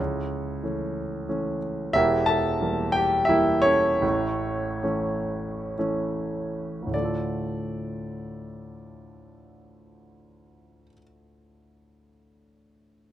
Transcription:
0.00 1.91 C#2 medium
0.00 0.63 C#4 medium
0.00 1.58 E4 medium
0.00 1.58 A4 medium
0.00 1.57 C#5 medium
0.63 1.27 E3 medium
0.63 1.27 A3 soft
0.63 1.27 C#4 medium
1.29 1.93 E3 medium
1.29 1.93 A3 soft
1.29 1.93 C#4 medium
1.93 3.99 E1 medium
1.93 3.99 E2 medium
1.93 2.26 E4 medium
1.93 2.26 G4 medium
1.93 2.26 A#4 medium
1.93 2.28 E5 loud
2.26 2.91 A4 medium
2.26 2.91 E5 medium
2.26 2.90 A5 loud
2.60 3.27 E3 medium
2.60 3.27 G3 medium
2.60 3.27 A#3 medium
2.92 3.29 G5 loud
2.96 3.28 G4 medium
3.25 4.00 E3 medium
3.25 4.00 G3 medium
3.25 3.64 E5 loud
3.29 4.01 A#3 medium
3.29 3.62 E4 medium
3.62 4.82 C#4 medium
3.62 5.76 E4 medium
3.62 5.76 A4 medium
3.62 5.74 C#5 loud
4.02 6.89 A1 medium
4.02 6.85 A2 medium
4.83 5.76 E3 medium
4.83 5.76 A3 medium
4.83 5.77 C#4 medium
5.78 6.90 E3 medium
5.78 6.90 A3 medium
5.78 6.90 C#4 medium
6.82 10.81 D2 medium
6.87 10.85 A2 soft
6.91 10.90 D3 soft
6.91 10.93 D5 medium
6.95 10.94 A3 soft
7.00 10.98 F4 medium
7.04 11.03 A4 medium

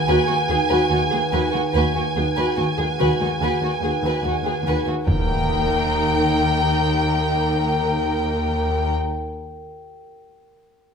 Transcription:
0.00 1.74 G#4 soft
0.00 1.73 B4 soft
0.00 1.70 F#5 soft
0.00 1.70 G#5 soft
0.07 0.15 D#2 soft
0.07 0.17 D#2 soft
0.07 0.33 D#3 soft
0.07 0.27 F#4 soft
0.07 0.27 B4 soft
0.26 0.38 D#2 soft
0.26 0.34 F#4 soft
0.26 0.36 F#4 soft
0.49 0.57 D#2 soft
0.49 0.58 D#2 soft
0.49 0.74 D#4 soft
0.49 0.58 F#4 soft
0.49 0.57 G#4 soft
0.69 0.79 D#2 soft
0.69 0.89 F#4 soft
0.69 0.89 B4 soft
0.89 0.99 D#2 soft
0.89 1.00 D#2 soft
0.89 1.16 D#3 soft
0.89 0.97 F#4 soft
0.89 0.99 F#4 soft
1.10 1.21 D#2 soft
1.10 1.20 F#4 soft
1.10 1.18 G#4 soft
1.32 1.41 D#2 soft
1.32 1.58 D#4 soft
1.32 1.52 F#4 soft
1.32 1.52 B4 soft
1.52 1.62 D#2 soft
1.52 1.60 F#4 soft
1.52 1.61 F#4 soft
1.74 1.83 D#2 soft
1.74 1.99 D#3 soft
1.74 1.94 F#4 soft
1.74 5.04 G#4 soft
1.74 1.93 B4 soft
1.74 5.03 B4 soft
1.74 5.04 F#5 soft
1.74 4.84 G#5 soft
1.95 2.03 D#2 soft
1.95 2.03 F#4 soft
1.95 2.04 F#4 soft
2.16 2.25 D#2 soft
2.16 2.41 D#4 soft
2.16 2.25 F#4 soft
2.16 2.24 G#4 soft
2.36 2.45 D#2 soft
2.36 2.56 F#4 soft
2.36 2.55 B4 soft
2.56 2.66 D#2 soft
2.56 2.83 D#3 soft
2.56 2.64 F#4 soft
2.56 2.66 F#4 soft
2.78 2.87 D#2 soft
2.78 2.86 F#4 soft
2.78 2.86 G#4 soft
2.99 3.08 D#2 soft
2.99 3.24 D#3 soft
2.99 3.18 F#4 soft
2.99 3.18 B4 soft
3.20 3.29 D#2 soft
3.20 3.28 F#4 soft
3.20 3.29 F#4 soft
3.40 3.48 D#2 soft
3.40 3.50 D#2 soft
3.40 3.65 D#3 soft
3.40 3.60 F#4 soft
3.40 3.61 B4 soft
3.61 3.69 D#2 soft
3.61 3.70 F#4 soft
3.61 3.71 F#4 soft
3.82 3.90 D#2 soft
3.82 3.92 D#2 soft
3.82 4.08 D#4 soft
3.82 3.90 F#4 soft
3.82 3.93 G#4 soft
4.02 4.10 D#2 soft
4.02 4.23 F#4 soft
4.02 4.23 B4 soft
4.23 4.31 D#2 soft
4.23 4.33 D#2 soft
4.23 4.49 D#3 soft
4.23 4.33 F#4 soft
4.23 4.34 F#4 soft
4.43 4.51 D#2 soft
4.43 4.54 F#4 soft
4.43 4.54 G#4 soft
4.64 4.72 D#2 soft
4.64 4.74 D#2 soft
4.64 4.90 D#4 soft
4.64 4.85 F#4 soft
4.64 4.85 B4 soft
4.86 4.94 D#2 soft
4.86 4.94 F#4 soft
4.86 4.96 F#4 soft
5.07 8.91 D#2 soft
5.07 8.92 D#2 soft
5.07 8.92 D#4 soft
5.07 8.93 G4 soft
5.07 8.91 A#4 soft
5.07 8.93 A#4 soft
5.07 8.91 G5 soft
5.07 8.94 G5 soft
5.07 taiko low medium
5.07 impact soft

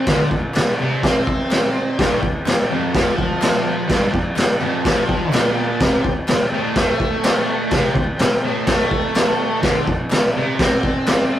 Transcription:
0.06 0.29 D3 loud
0.06 0.39 A4 loud
0.06 0.39 D5 medium
0.06 0.40 F#5 loud
0.06 kick medium
0.06 snare loud
0.06 crash medium
0.30 muted distorted electric guitar stroke medium
0.30 kick medium
0.54 0.87 A4 medium
0.54 0.88 D5 medium
0.54 0.88 F#5 medium
0.54 muted distorted electric guitar stroke medium
0.54 snare loud
0.54 clap medium
0.54 crash medium
0.81 1.03 C3 loud
1.02 1.98 C4 loud
1.02 1.35 A4 medium
1.02 1.36 D5 medium
1.02 1.24 E5 medium
1.02 kick loud
1.02 snare loud
1.02 crash medium
1.26 1.48 E5 medium
1.26 kick medium
1.48 1.82 A4 medium
1.48 1.82 D5 medium
1.48 1.83 F#5 loud
1.48 clap medium
1.48 crash medium
1.52 snare loud
1.73 1.96 A5 medium
1.94 2.29 G4 medium
1.94 2.30 D5 loud
1.94 2.30 G5 loud
1.99 2.22 G2 loud
1.99 kick loud
1.99 snare loud
1.99 crash medium
2.23 muted distorted electric guitar stroke medium
2.23 kick medium
2.44 2.78 G4 medium
2.44 2.79 D5 medium
2.44 2.79 G5 medium
2.44 muted distorted electric guitar stroke medium
2.44 snare loud
2.44 clap medium
2.44 crash medium
2.70 2.93 F2 loud
2.91 3.89 F3 loud
2.91 3.25 G4 medium
2.91 3.26 D5 medium
2.91 3.26 F#5 medium
2.91 kick loud
2.95 snare loud
2.95 crash medium
3.18 kick medium
3.41 3.74 G4 medium
3.41 3.75 D5 medium
3.41 3.75 E5 loud
3.41 snare loud
3.41 clap loud
3.41 crash medium
3.88 4.11 G2 loud
3.88 4.21 G4 loud
3.88 4.22 D5 loud
3.88 4.22 A5 loud
3.88 kick loud
3.88 snare loud
3.88 crash medium
4.13 muted distorted electric guitar stroke medium
4.13 kick medium
4.36 4.70 G4 medium
4.36 4.70 D5 medium
4.36 4.70 F#5 medium
4.36 muted distorted electric guitar stroke medium
4.36 snare loud
4.36 clap loud
4.36 crash medium
4.61 4.84 F2 loud
4.61 clap medium
4.84 5.33 F3 loud
4.84 5.17 G4 medium
4.84 5.09 D5 medium
4.84 5.18 G5 medium
4.84 kick loud
4.84 snare loud
4.84 crash medium
5.09 5.32 D5 medium
5.09 kick medium
5.33 5.80 A#2 loud
5.33 5.66 G4 medium
5.33 5.66 D5 medium
5.33 5.67 G5 loud
5.33 5.77 A5 medium
5.33 snare loud
5.33 clap loud
5.33 crash medium
5.79 6.04 C3 loud
5.79 6.13 G4 loud
5.79 6.13 C5 medium
5.79 6.13 G5 loud
5.79 kick loud
5.79 snare loud
5.79 crash medium
6.04 muted distorted electric guitar stroke soft
6.04 kick medium
6.27 6.61 G4 medium
6.27 6.62 C5 medium
6.27 6.62 G5 medium
6.27 muted distorted electric guitar stroke medium
6.27 snare loud
6.27 clap loud
6.27 crash medium
6.53 6.76 A2 loud
6.74 7.72 A3 loud
6.74 7.08 G4 medium
6.74 7.09 C5 medium
6.74 7.09 E5 medium
6.74 kick loud
6.74 snare loud
6.74 crash medium
7.00 kick medium
7.23 7.56 G4 medium
7.23 7.56 C5 medium
7.23 7.56 G5 loud
7.23 snare loud
7.23 clap loud
7.23 crash medium
7.71 7.94 C3 loud
7.71 8.05 G4 loud
7.71 8.04 C5 loud
7.71 8.05 G5 loud
7.71 kick loud
7.71 snare loud
7.71 crash medium
7.95 muted distorted electric guitar stroke medium
7.95 kick medium
8.16 8.51 G4 medium
8.16 8.51 C5 medium
8.16 8.52 G5 loud
8.16 crash medium
8.20 muted distorted electric guitar stroke medium
8.20 snare loud
8.20 clap medium
8.44 8.67 A2 loud
8.66 9.62 A3 loud
8.66 9.00 G4 medium
8.66 9.00 C5 medium
8.66 9.01 G5 medium
8.66 kick loud
8.66 snare loud
8.66 crash medium
8.91 kick medium
9.15 9.49 G4 medium
9.15 9.48 C5 medium
9.15 9.49 G5 loud
9.15 snare loud
9.15 clap loud
9.15 crash medium
9.62 9.86 D3 loud
9.62 9.96 A4 loud
9.62 9.97 D5 medium
9.62 9.97 F#5 loud
9.62 kick loud
9.62 snare loud
9.62 crash medium
9.87 muted distorted electric guitar stroke medium
9.87 kick medium
10.10 10.44 A4 loud
10.10 10.44 D5 medium
10.10 10.44 E5 loud
10.10 muted distorted electric guitar stroke medium
10.10 snare loud
10.10 clap loud
10.10 crash medium
10.36 10.59 C3 loud
10.59 11.39 C4 loud
10.59 10.93 A4 medium
10.59 10.93 D5 medium
10.59 10.93 F#5 loud
10.59 kick loud
10.59 snare loud
10.59 crash medium
10.83 kick medium
11.07 11.39 A4 medium
11.07 11.39 D5 medium
11.07 11.39 E5 medium
11.07 snare loud
11.07 clap loud
11.07 crash medium

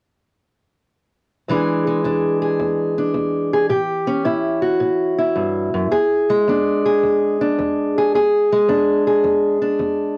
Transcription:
1.48 2.00 E2 medium
1.48 5.93 E3 soft
1.48 1.86 G#3 soft
1.48 2.04 D4 soft
1.48 2.41 G#4 medium
1.87 3.71 G#3 soft
2.04 2.56 E2 medium
2.04 2.97 D4 medium
2.42 3.52 G#4 soft
2.59 3.11 E2 medium
2.98 3.69 D4 soft
3.14 3.66 E2 medium
3.53 3.69 G#4 medium
3.69 4.22 A2 medium
3.69 4.62 G4 medium
4.07 5.90 C#4 medium
4.25 4.77 A2 medium
4.25 5.18 E4 soft
4.62 5.89 F#4 soft
4.80 5.33 A2 medium
5.19 6.49 E4 soft
5.36 5.74 G2 medium
5.74 5.91 F#2 medium
5.91 6.44 E2 medium
5.91 6.85 G#4 medium
6.30 8.51 G#3 medium
6.48 7.00 E2 medium
6.48 7.41 D4 medium
6.86 7.97 G#4 medium
7.03 7.55 E2 medium
7.41 8.17 D4 medium
7.58 8.10 E2 medium
7.98 8.15 G#4 medium
8.14 8.66 E2 medium
8.14 9.06 G#4 medium
8.52 10.17 G#3 medium
8.68 9.21 E2 medium
8.68 9.61 D4 medium
9.07 10.17 G#4 medium
9.24 9.76 E2 medium
9.62 10.17 D4 soft
9.79 10.17 E2 medium

